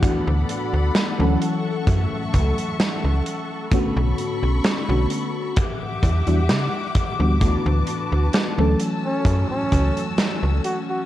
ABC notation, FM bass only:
X:1
M:4/4
L:1/16
Q:1/4=65
K:F#phr
V:1 name="FM bass" clef=bass
D,, D,, z D,, z D,, z2 F,, z C,, z2 C,, z2 | B,,, B,,, z B,,, z B,,, z4 E,, E,, C, z2 D,,- | D,, D,, z D,, z D,, z2 F,, z C,, z2 C,, z2 |]